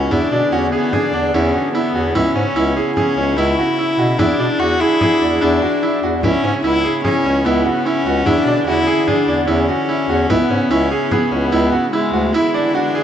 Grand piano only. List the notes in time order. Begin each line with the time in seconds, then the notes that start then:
0.11 E4
0.31 D4
0.52 F#4
0.72 G#4
0.93 G#4
1.14 D4
1.34 E4
1.54 F#4
1.75 E4
1.95 F#4
2.15 E4
2.36 C#4
2.56 E4
2.77 G#4
2.97 G#4
3.17 C#4
3.38 E4
3.59 F#4
3.79 E4
3.99 F#4
4.19 E4
4.40 D4
4.60 F#4
4.81 G#4
5.01 G#4
5.22 D4
5.42 E4
5.63 F#4
5.83 E4
6.03 F#4
6.24 E4
6.44 C#4
6.64 E4
6.84 G#4
7.05 G#4
7.26 C#4
7.46 E4
7.66 F#4
7.86 E4
8.06 F#4
8.27 E4
8.47 D4
8.67 F#4
8.87 G#4
9.08 G#4
9.28 D4
9.47 E4
9.68 F#4
9.89 E4
10.09 F#4
10.30 E4
10.50 C#4
10.71 E4
10.91 G#4
11.11 G#4
11.32 C#4
11.52 E4
11.72 F#4
11.93 E4
12.13 F#4
12.34 E4
12.54 D4
12.75 F#4
12.95 G#4